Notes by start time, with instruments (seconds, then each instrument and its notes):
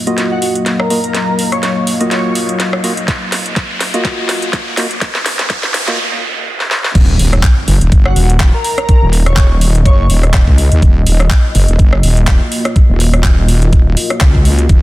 Already playing: analog synth pad F#3 A#3 D#5 F5, riser
0.07 synth stab A#3 F4 F#4 D#5, closed hi-hat
0.18 snare, closed hi-hat
0.31 digital synth lead F#4
0.42 digital synth lead F#4, open hi-hat
0.55 closed hi-hat
0.66 snare, closed hi-hat
0.79 digital synth lead A#4, cross-stick
0.90 synth stab A#3 F4 F#4 D#5, open hi-hat
1.04 closed hi-hat
1.15 snare, closed hi-hat
1.39 open hi-hat
1.52 digital synth lead C#5, cross-stick, closed hi-hat
1.63 digital synth lead C#5, snare, closed hi-hat
1.87 open hi-hat
2.00 synth stab A#3 F4 F#4 D#5, closed hi-hat
2.11 digital synth lead C#5, snare, closed hi-hat
2.25 digital synth lead C#5
2.35 open hi-hat
2.49 closed hi-hat
2.60 snare, closed hi-hat
2.73 cross-stick
2.84 synth stab A#3 F4 F#4 D#5, open hi-hat
2.97 closed hi-hat
3.08 kick, snare, closed hi-hat
3.32 snare, open hi-hat
3.46 closed hi-hat
3.56 kick, snare, closed hi-hat
3.81 snare, open hi-hat
3.94 synth stab A#3 F4 F#4 D#5, closed hi-hat
4.05 kick, snare, closed hi-hat
4.29 snare, open hi-hat
4.42 closed hi-hat
4.53 kick, snare, closed hi-hat
4.77 synth stab A#3 F4 F#4 D#5, snare, open hi-hat
4.91 closed hi-hat
5.01 kick, snare, closed hi-hat, noise sweep
5.15 snare
5.26 snare, open hi-hat
5.39 snare, closed hi-hat
5.50 kick, snare, closed hi-hat
5.63 snare
5.74 snare, open hi-hat
5.88 synth stab A#3 F4 F#4 D#5, snare, closed hi-hat
6.60 snare
6.71 snare
6.84 snare
6.95 wobble bass D#1, analog synth pad A#3 F4 F#4 D#5, kick, closed hi-hat, crash, impact
7.19 wobble bass D#1, open hi-hat
7.33 cross-stick, closed hi-hat
7.43 kick, clap, closed hi-hat
7.68 wobble bass F#1, open hi-hat
7.81 wobble bass D#1, closed hi-hat
7.92 wobble bass F#1, kick, closed hi-hat
8.05 digital synth lead F#4, cross-stick
8.16 wobble bass D#1, digital synth lead F#4, open hi-hat
8.30 closed hi-hat
8.40 kick, clap, closed hi-hat
8.54 digital synth lead A#4
8.64 open hi-hat
8.78 cross-stick, closed hi-hat
8.89 kick, closed hi-hat
9.02 wobble bass D#1
9.13 open hi-hat
9.26 digital synth lead C#5, cross-stick, closed hi-hat
9.37 wobble bass D#1, digital synth lead C#5, kick, clap, closed hi-hat
9.61 open hi-hat
9.75 closed hi-hat
9.85 wobble bass F#1, digital synth lead C#5, kick, closed hi-hat
9.99 digital synth lead C#5
10.10 wobble bass D#1, open hi-hat
10.23 cross-stick, closed hi-hat
10.34 kick, cross-stick, clap, closed hi-hat
10.47 wobble bass C#2, kick
10.58 open hi-hat
10.72 wobble bass D#2, closed hi-hat
10.82 wobble bass D#1, kick, closed hi-hat
11.06 wobble bass D#1, open hi-hat
11.20 cross-stick, closed hi-hat
11.30 kick, clap, closed hi-hat
11.55 wobble bass F#1, open hi-hat
11.68 wobble bass D#1, closed hi-hat
11.79 wobble bass F#1, kick, closed hi-hat
11.93 cross-stick
12.03 wobble bass D#1, open hi-hat
12.17 closed hi-hat
12.27 kick, clap, closed hi-hat
12.52 open hi-hat
12.65 cross-stick, closed hi-hat
12.76 kick, closed hi-hat
12.89 wobble bass D#1
13.00 open hi-hat
13.14 cross-stick, closed hi-hat
13.24 wobble bass D#1, kick, clap, closed hi-hat
13.48 open hi-hat
13.62 closed hi-hat
13.73 wobble bass D#1, kick, closed hi-hat
13.97 open hi-hat
14.10 cross-stick, closed hi-hat
14.21 wobble bass C#2, kick, cross-stick, clap, closed hi-hat
14.34 kick
14.45 open hi-hat
14.59 closed hi-hat
14.69 wobble bass D#1, analog synth pad A#4, kick, closed hi-hat